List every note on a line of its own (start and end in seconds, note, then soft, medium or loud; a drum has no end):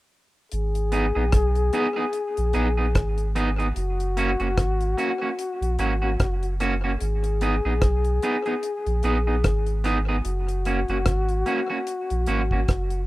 0.52 1.12 G#1 medium
0.52 3.32 G#4 medium
0.52 closed hi-hat medium
0.75 closed hi-hat medium
0.92 1.05 B3 medium
0.92 1.05 D#4 medium
0.92 1.05 G#4 medium
0.92 closed hi-hat medium
1.15 1.32 A#1 medium
1.15 1.23 B3 soft
1.15 1.23 D#4 medium
1.15 1.23 G#4 medium
1.32 1.71 B1 loud
1.32 kick loud
1.32 cross-stick loud
1.32 closed hi-hat loud
1.55 closed hi-hat soft
1.73 1.86 B3 medium
1.73 1.86 D#4 medium
1.73 1.87 G#4 loud
1.73 closed hi-hat medium
1.96 2.04 B3 medium
1.96 2.04 D#4 medium
1.96 2.04 G#4 medium
2.13 closed hi-hat medium
2.37 2.54 A#1 loud
2.37 closed hi-hat medium
2.53 2.97 A#1 medium
2.53 2.67 B3 medium
2.53 2.67 D#4 medium
2.53 2.67 G#4 medium
2.53 closed hi-hat medium
2.77 2.86 B3 soft
2.77 2.85 D#4 soft
2.77 2.85 G#4 medium
2.95 3.72 G#1 medium
2.95 kick loud
2.95 cross-stick loud
2.95 closed hi-hat medium
3.18 closed hi-hat medium
3.35 3.48 B3 medium
3.35 3.49 D#4 loud
3.35 3.49 G#4 medium
3.35 closed hi-hat medium
3.58 3.67 B3 soft
3.58 3.66 D#4 medium
3.58 3.66 G#4 medium
3.58 closed hi-hat soft
3.76 4.36 F#1 loud
3.76 6.56 F#4 medium
3.76 closed hi-hat medium
4.00 closed hi-hat medium
4.17 4.30 A#3 medium
4.17 4.30 C#4 medium
4.17 4.30 F#4 medium
4.17 closed hi-hat medium
4.40 4.56 F#1 medium
4.40 4.48 A#3 soft
4.40 4.48 C#4 medium
4.40 4.47 F#4 medium
4.40 closed hi-hat soft
4.57 4.95 G#1 loud
4.57 kick loud
4.57 cross-stick loud
4.57 closed hi-hat loud
4.81 closed hi-hat soft
4.98 5.10 A#3 medium
4.98 5.11 C#4 medium
4.98 5.11 F#4 medium
4.98 closed hi-hat medium
5.22 5.29 A#3 medium
5.22 5.29 C#4 medium
5.22 5.29 F#4 medium
5.39 closed hi-hat medium
5.61 5.77 A#1 medium
5.61 closed hi-hat medium
5.79 6.17 G#1 medium
5.79 5.92 A#3 medium
5.79 5.92 C#4 medium
5.79 5.92 F#4 medium
5.79 closed hi-hat medium
6.02 6.10 A#3 soft
6.02 6.10 C#4 medium
6.02 6.09 F#4 medium
6.20 6.97 F#1 medium
6.20 kick loud
6.20 cross-stick loud
6.20 closed hi-hat medium
6.43 closed hi-hat medium
6.60 6.73 A#3 medium
6.60 6.73 C#4 medium
6.60 6.73 F#4 medium
6.60 cross-stick medium
6.60 closed hi-hat medium
6.84 6.92 A#3 medium
6.84 6.91 C#4 medium
6.84 6.91 F#4 medium
7.00 7.61 G#1 loud
7.00 9.80 G#4 medium
7.00 closed hi-hat medium
7.24 closed hi-hat medium
7.41 7.54 B3 medium
7.41 7.54 D#4 medium
7.41 7.55 G#4 medium
7.41 closed hi-hat medium
7.65 7.81 A#1 medium
7.65 7.73 B3 soft
7.65 7.73 D#4 soft
7.65 7.72 G#4 medium
7.82 8.20 B1 medium
7.82 kick loud
7.82 cross-stick loud
7.82 closed hi-hat medium
8.04 closed hi-hat soft
8.22 8.35 B3 medium
8.22 8.36 D#4 medium
8.22 8.36 G#4 medium
8.22 closed hi-hat medium
8.46 8.54 B3 medium
8.46 8.54 D#4 medium
8.46 8.53 G#4 medium
8.46 closed hi-hat soft
8.63 closed hi-hat medium
8.86 9.02 A#1 loud
8.86 closed hi-hat medium
9.03 9.46 A#1 medium
9.03 9.17 B3 medium
9.03 9.17 D#4 medium
9.03 9.17 G#4 medium
9.03 closed hi-hat medium
9.27 9.35 B3 soft
9.27 9.34 D#4 medium
9.27 9.34 G#4 medium
9.44 10.21 G#1 medium
9.44 kick loud
9.44 cross-stick loud
9.44 closed hi-hat medium
9.66 closed hi-hat soft
9.84 9.97 B3 medium
9.84 9.98 D#4 loud
9.84 9.98 G#4 medium
9.84 cross-stick medium
9.84 closed hi-hat medium
10.09 10.16 B3 medium
10.09 10.16 D#4 medium
10.09 10.16 G#4 medium
10.24 10.85 F#1 loud
10.24 13.05 F#4 medium
10.24 closed hi-hat medium
10.49 closed hi-hat medium
10.65 10.79 A#3 medium
10.65 10.79 C#4 medium
10.65 10.79 F#4 medium
10.65 closed hi-hat medium
10.88 11.05 F#1 medium
10.88 10.97 A#3 soft
10.88 10.97 C#4 medium
10.88 10.97 F#4 medium
10.88 closed hi-hat soft
11.06 11.44 G#1 loud
11.06 kick medium
11.06 cross-stick loud
11.06 closed hi-hat loud
11.29 closed hi-hat soft
11.46 11.59 A#3 medium
11.46 11.60 C#4 medium
11.46 11.60 F#4 medium
11.46 closed hi-hat medium
11.70 11.78 A#3 soft
11.70 11.78 C#4 medium
11.70 11.77 F#4 medium
11.87 closed hi-hat medium
12.10 12.27 A#1 medium
12.10 closed hi-hat medium
12.26 12.66 G#1 medium
12.26 12.40 A#3 medium
12.26 12.41 C#4 medium
12.26 12.41 F#4 medium
12.26 closed hi-hat medium
12.51 12.60 A#3 soft
12.51 12.59 C#4 soft
12.51 12.59 F#4 medium
12.51 kick medium
12.68 13.07 F#1 medium
12.68 kick loud
12.68 cross-stick medium
12.68 closed hi-hat medium
12.90 closed hi-hat medium